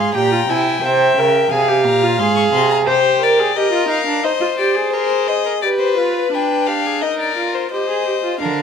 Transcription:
0.00 0.14 G#2 medium
0.00 0.16 G#4 medium
0.00 0.14 F5 medium
0.00 0.13 C6 medium
0.14 0.47 A#2 medium
0.14 0.31 G4 medium
0.14 0.86 G5 medium
0.14 0.51 A#5 medium
0.32 0.38 F4 medium
0.48 0.82 C3 medium
0.48 0.82 E4 medium
0.48 0.86 G#5 medium
0.82 1.16 C3 medium
0.82 1.20 C5 medium
0.82 1.52 E5 medium
0.82 1.53 G5 medium
1.17 1.50 C#3 medium
1.17 1.50 A#4 medium
1.51 1.86 C3 medium
1.51 1.69 G#4 medium
1.51 2.85 F5 medium
1.51 1.85 G#5 medium
1.68 2.04 G4 medium
1.85 2.20 A#2 medium
1.85 2.21 A#5 medium
2.03 2.19 F4 medium
2.19 2.52 G#2 medium
2.19 2.88 G#4 medium
2.19 2.36 C6 medium
2.36 2.43 C#6 medium
2.53 2.87 C3 medium
2.53 2.70 C6 medium
2.70 2.77 A#5 medium
2.86 3.54 G4 medium
2.86 3.21 C5 medium
2.86 3.25 C5 loud
3.21 3.40 A#4 medium
3.21 3.58 D5 medium
3.39 3.56 G#4 medium
3.56 3.72 G4 medium
3.56 4.26 A#4 medium
3.56 3.90 D#5 medium
3.72 3.88 F4 medium
3.88 4.06 D#4 medium
3.88 4.25 F5 medium
4.06 4.23 D4 medium
4.24 4.31 D#4 medium
4.24 4.94 C5 medium
4.24 4.58 D#5 medium
4.40 4.47 F4 medium
4.58 4.76 G4 medium
4.58 4.92 D5 medium
4.75 5.63 G#4 medium
4.93 5.30 A#4 medium
4.93 5.29 C5 medium
5.28 5.45 C5 medium
5.28 5.61 D#5 medium
5.45 5.52 A#4 medium
5.62 5.96 G4 medium
5.62 6.31 B4 medium
5.62 5.69 D5 medium
5.80 5.99 C5 medium
5.97 6.31 F4 medium
5.97 6.35 B4 medium
6.32 7.04 D4 medium
6.32 6.69 B4 medium
6.32 6.68 G5 medium
6.67 6.87 G4 medium
6.67 7.03 F5 medium
6.86 7.03 G#4 medium
7.01 7.36 D#4 medium
7.01 7.71 A#4 medium
7.01 7.19 D#5 medium
7.20 7.56 D5 medium
7.37 7.71 F4 medium
7.54 7.71 C5 medium
7.72 7.88 G4 medium
7.72 8.40 C5 medium
7.72 8.40 D#5 medium
7.89 8.06 G#4 medium
8.07 8.13 G4 medium
8.24 8.40 F4 medium
8.40 8.62 D3 medium
8.40 8.62 D4 medium
8.40 8.62 A#4 medium
8.40 8.62 F5 medium

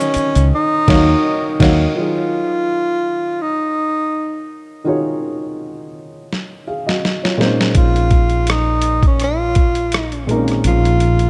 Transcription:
0.00 0.88 D#3 medium
0.00 0.49 C#4 medium
0.00 0.89 D#4 medium
0.00 0.89 F#4 medium
0.00 0.89 C#5 medium
0.00 1.98 D#5 loud
0.00 0.53 G#5 medium
0.00 maracas soft
0.14 muted fretless electric bass stroke soft
0.14 closed hi-hat medium
0.14 maracas soft
0.35 0.51 C#2 medium
0.35 closed hi-hat soft
0.35 maracas soft
0.55 1.58 D#4 medium
0.88 1.13 D#2 loud
0.88 1.13 D#3 medium
0.88 1.14 D#4 loud
0.88 1.14 F#4 medium
0.88 1.14 C#5 loud
0.88 1.14 F5 medium
0.88 kick loud
0.88 snare loud
0.88 crash medium
1.60 1.86 D#2 loud
1.60 1.85 D#3 medium
1.60 1.85 D#4 medium
1.60 1.86 F#4 medium
1.60 1.86 C#5 medium
1.60 1.86 F5 medium
1.60 kick loud
1.60 snare loud
1.60 crash medium
1.95 4.81 D#3 medium
1.95 4.82 F#3 soft
1.95 4.81 D#4 soft
1.95 4.82 F4 soft
1.95 3.43 F4 medium
1.95 4.83 G#4 medium
1.95 4.83 C#5 medium
3.42 4.50 D#4 medium
4.84 7.34 D#3 medium
4.84 7.34 D#4 medium
4.84 6.63 F4 medium
4.84 6.63 F#4 medium
4.84 6.64 G#4 medium
4.84 6.64 C#5 medium
6.33 snare soft
6.67 6.86 G#4 soft
6.67 6.86 F5 medium
6.86 7.21 F#4 medium
6.86 7.21 D#5 medium
6.86 snare medium
7.05 snare medium
7.23 7.57 F4 soft
7.23 7.57 C#5 medium
7.23 snare medium
7.37 10.23 A#2 medium
7.37 10.24 G#3 medium
7.37 7.46 C4 soft
7.37 10.25 D#4 medium
7.37 10.25 C5 medium
7.37 snare medium
7.46 10.27 C#4 medium
7.61 snare medium
7.75 10.60 A#1 medium
7.75 8.52 F4 medium
7.75 kick loud
7.75 closed hi-hat medium
7.96 closed hi-hat soft
8.11 kick medium
8.11 closed hi-hat medium
8.30 closed hi-hat soft
8.47 9.05 D#4 medium
8.47 cross-stick loud
8.47 closed hi-hat medium
8.82 closed hi-hat medium
9.03 kick medium
9.03 closed hi-hat soft
9.07 9.20 C#4 medium
9.20 10.26 F4 medium
9.20 cross-stick soft
9.20 closed hi-hat medium
9.55 kick medium
9.55 closed hi-hat medium
9.75 closed hi-hat soft
9.92 cross-stick medium
9.92 closed hi-hat medium
10.12 closed hi-hat soft
10.27 11.30 A#2 medium
10.27 11.30 G#3 medium
10.27 10.35 C4 soft
10.27 11.30 D#4 medium
10.27 11.30 A#4 medium
10.27 closed hi-hat soft
10.35 11.30 C#4 medium
10.48 cross-stick soft
10.48 closed hi-hat soft
10.64 11.30 A#1 medium
10.64 11.30 F4 medium
10.64 closed hi-hat medium
10.85 closed hi-hat soft
11.00 closed hi-hat medium
11.19 closed hi-hat soft

